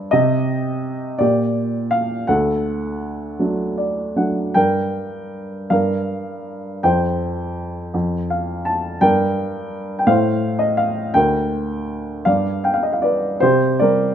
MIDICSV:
0, 0, Header, 1, 2, 480
1, 0, Start_track
1, 0, Key_signature, -2, "minor"
1, 0, Tempo, 725514
1, 76, Time_signature, 6, 3, 24, 8
1, 1997, Tempo, 763359
1, 4397, Tempo, 734394
1, 5357, Tempo, 710900
1, 7277, Tempo, 756620
1, 9179, End_track
2, 0, Start_track
2, 0, Title_t, "Upright piano"
2, 0, Program_c, 0, 0
2, 0, Control_c, 0, 64, 127
2, 0, Note_on_c, 0, 43, 56
2, 73, Note_on_c, 0, 75, 75
2, 85, Control_c, 0, 64, 0
2, 85, Note_on_c, 0, 48, 60
2, 86, Note_on_c, 0, 67, 52
2, 91, Note_off_c, 0, 43, 0
2, 205, Control_c, 0, 64, 127
2, 767, Note_off_c, 0, 67, 0
2, 772, Note_off_c, 0, 48, 0
2, 784, Note_on_c, 0, 74, 66
2, 796, Control_c, 0, 64, 0
2, 796, Note_on_c, 0, 46, 52
2, 796, Note_on_c, 0, 67, 51
2, 808, Note_off_c, 0, 75, 0
2, 927, Control_c, 0, 64, 127
2, 1262, Note_on_c, 0, 77, 69
2, 1280, Note_off_c, 0, 74, 0
2, 1486, Note_off_c, 0, 67, 0
2, 1491, Note_off_c, 0, 46, 0
2, 1504, Note_on_c, 0, 78, 72
2, 1510, Note_on_c, 0, 38, 52
2, 1513, Note_off_c, 0, 77, 0
2, 1514, Note_on_c, 0, 69, 49
2, 1518, Control_c, 0, 64, 0
2, 1639, Control_c, 0, 64, 127
2, 2232, Note_on_c, 0, 54, 32
2, 2234, Note_on_c, 0, 57, 29
2, 2237, Note_on_c, 0, 62, 37
2, 2450, Note_off_c, 0, 78, 0
2, 2454, Note_off_c, 0, 69, 0
2, 2473, Note_on_c, 0, 74, 45
2, 2699, Note_off_c, 0, 74, 0
2, 2701, Note_off_c, 0, 54, 0
2, 2702, Note_off_c, 0, 57, 0
2, 2704, Note_off_c, 0, 62, 0
2, 2715, Note_on_c, 0, 54, 31
2, 2716, Note_on_c, 0, 57, 29
2, 2717, Note_on_c, 0, 62, 36
2, 2718, Note_on_c, 0, 78, 45
2, 2935, Note_off_c, 0, 38, 0
2, 2943, Note_off_c, 0, 78, 0
2, 2951, Note_off_c, 0, 54, 0
2, 2951, Note_off_c, 0, 57, 0
2, 2952, Note_off_c, 0, 62, 0
2, 2956, Note_on_c, 0, 79, 72
2, 2962, Note_on_c, 0, 43, 47
2, 2968, Control_c, 0, 64, 0
2, 2968, Note_on_c, 0, 70, 53
2, 3087, Control_c, 0, 64, 127
2, 3667, Note_off_c, 0, 70, 0
2, 3668, Note_off_c, 0, 43, 0
2, 3683, Note_on_c, 0, 77, 65
2, 3685, Note_on_c, 0, 43, 50
2, 3695, Control_c, 0, 64, 0
2, 3698, Note_on_c, 0, 70, 47
2, 3708, Note_off_c, 0, 79, 0
2, 3806, Control_c, 0, 64, 127
2, 4375, Note_off_c, 0, 43, 0
2, 4378, Note_off_c, 0, 70, 0
2, 4395, Note_on_c, 0, 79, 69
2, 4397, Note_on_c, 0, 41, 52
2, 4405, Note_on_c, 0, 72, 50
2, 4407, Control_c, 0, 64, 0
2, 4418, Note_off_c, 0, 77, 0
2, 4518, Control_c, 0, 64, 127
2, 5096, Note_off_c, 0, 41, 0
2, 5118, Note_on_c, 0, 41, 52
2, 5127, Control_c, 0, 64, 0
2, 5253, Control_c, 0, 64, 127
2, 5330, Note_off_c, 0, 79, 0
2, 5335, Note_off_c, 0, 72, 0
2, 5356, Note_on_c, 0, 77, 54
2, 5583, Note_off_c, 0, 77, 0
2, 5592, Note_on_c, 0, 81, 58
2, 5819, Note_off_c, 0, 41, 0
2, 5819, Note_off_c, 0, 81, 0
2, 5834, Note_on_c, 0, 79, 83
2, 5836, Note_on_c, 0, 43, 58
2, 5842, Note_on_c, 0, 70, 59
2, 5850, Control_c, 0, 64, 0
2, 5972, Control_c, 0, 64, 127
2, 6484, Note_off_c, 0, 79, 0
2, 6494, Note_on_c, 0, 79, 57
2, 6525, Note_off_c, 0, 70, 0
2, 6528, Note_off_c, 0, 43, 0
2, 6545, Note_off_c, 0, 79, 0
2, 6547, Note_on_c, 0, 45, 61
2, 6548, Note_on_c, 0, 77, 79
2, 6556, Note_on_c, 0, 72, 57
2, 6561, Control_c, 0, 64, 0
2, 6679, Control_c, 0, 64, 127
2, 6883, Note_off_c, 0, 77, 0
2, 6899, Note_on_c, 0, 75, 62
2, 7024, Note_on_c, 0, 77, 73
2, 7030, Note_off_c, 0, 75, 0
2, 7254, Note_off_c, 0, 45, 0
2, 7254, Note_off_c, 0, 72, 0
2, 7271, Note_on_c, 0, 79, 72
2, 7276, Note_on_c, 0, 38, 53
2, 7281, Note_off_c, 0, 77, 0
2, 7285, Control_c, 0, 64, 0
2, 7285, Note_on_c, 0, 70, 52
2, 7389, Control_c, 0, 64, 127
2, 7966, Note_off_c, 0, 38, 0
2, 7977, Note_on_c, 0, 77, 73
2, 7984, Note_on_c, 0, 43, 50
2, 7991, Note_on_c, 0, 74, 51
2, 7997, Control_c, 0, 64, 0
2, 8090, Control_c, 0, 64, 127
2, 8213, Note_off_c, 0, 77, 0
2, 8216, Note_off_c, 0, 79, 0
2, 8221, Note_off_c, 0, 74, 0
2, 8223, Note_on_c, 0, 77, 49
2, 8225, Note_on_c, 0, 79, 56
2, 8276, Note_off_c, 0, 77, 0
2, 8285, Note_on_c, 0, 77, 57
2, 8290, Note_off_c, 0, 79, 0
2, 8343, Note_on_c, 0, 75, 51
2, 8349, Note_off_c, 0, 77, 0
2, 8407, Note_off_c, 0, 75, 0
2, 8407, Note_on_c, 0, 77, 49
2, 8449, Note_off_c, 0, 70, 0
2, 8464, Note_on_c, 0, 74, 61
2, 8468, Note_off_c, 0, 77, 0
2, 8476, Note_on_c, 0, 71, 49
2, 8691, Note_off_c, 0, 43, 0
2, 8701, Note_off_c, 0, 71, 0
2, 8708, Note_on_c, 0, 72, 72
2, 8719, Note_off_c, 0, 74, 0
2, 8720, Note_on_c, 0, 48, 51
2, 8723, Control_c, 0, 64, 0
2, 8723, Note_on_c, 0, 67, 60
2, 8820, Control_c, 0, 64, 127
2, 8946, Note_off_c, 0, 67, 0
2, 8956, Note_on_c, 0, 74, 73
2, 8963, Note_off_c, 0, 72, 0
2, 8968, Note_on_c, 0, 55, 45
2, 8970, Note_on_c, 0, 70, 60
2, 9179, Note_off_c, 0, 48, 0
2, 9179, Note_off_c, 0, 55, 0
2, 9179, Note_off_c, 0, 70, 0
2, 9179, Note_off_c, 0, 74, 0
2, 9179, End_track
0, 0, End_of_file